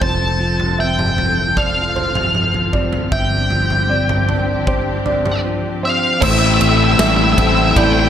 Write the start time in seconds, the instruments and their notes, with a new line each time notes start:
Already playing: clean electric guitar C4, string section A4
0.01 fingered electric bass F1, clean electric guitar F3, string section F3 C4 F4, felt piano C5, lead electric guitar A5, kick, floor tom
0.40 clean electric guitar F3
0.60 floor tom
0.78 clean electric guitar C4, felt piano E5, lead electric guitar G5
0.99 mid tom
1.18 floor tom
1.57 clean electric guitar A4, felt piano D5, lead electric guitar F5, kick, floor tom
1.96 felt piano C5, floor tom
2.15 floor tom, mid tom
2.35 clean electric guitar F3, mid tom
2.54 floor tom
2.73 clean electric guitar C4, felt piano D5, kick, mid tom
2.93 floor tom
3.12 fingered electric bass G1, clean electric guitar G2, string section C4 D4 G4, felt piano E5, lead electric guitar G5, kick, floor tom
3.50 clean electric guitar F3, floor tom
3.70 floor tom
3.90 clean electric guitar C4, felt piano D5
4.09 floor tom, mid tom
4.29 clean electric guitar D4, floor tom
4.67 clean electric guitar G4, felt piano C5, kick, floor tom
5.05 clean electric guitar D4, felt piano D5, floor tom
5.26 floor tom, mid tom
5.44 clean electric guitar F3
5.83 clean electric guitar C4, felt piano C5, lead electric guitar F5
6.21 fingered electric bass A1, distorted electric guitar A2 E3 A3 C4 E4, clean electric guitar A2, string section E4 A4 C5 G5, felt piano C5, lead electric guitar E5, kick, crash
6.31 lead electric guitar E5
6.39 lead electric guitar E5
6.46 lead electric guitar E5
6.54 lead electric guitar E5
6.60 fingered electric bass A1, clean electric guitar C4, lead electric guitar E5, ride
6.69 lead electric guitar E5
6.77 lead electric guitar E5
6.84 lead electric guitar E5
6.92 lead electric guitar E5
6.99 fingered electric bass A1, clean electric guitar G3, felt piano E5, lead electric guitar E5, snare, ride
7.09 lead electric guitar E5
7.16 lead electric guitar E5
7.24 lead electric guitar E5
7.33 lead electric guitar E5
7.38 fingered electric bass A1, distorted electric guitar A2 E3 A3 C4 E4, clean electric guitar C4, lead electric guitar E5, kick, ride
7.47 lead electric guitar E5
7.55 lead electric guitar E5
7.64 lead electric guitar E5
7.71 lead electric guitar E5
7.76 fingered electric bass A1, clean electric guitar E4, felt piano D5, lead electric guitar G5, kick, ride
7.84 lead electric guitar G5
7.93 lead electric guitar G5
8.00 lead electric guitar G5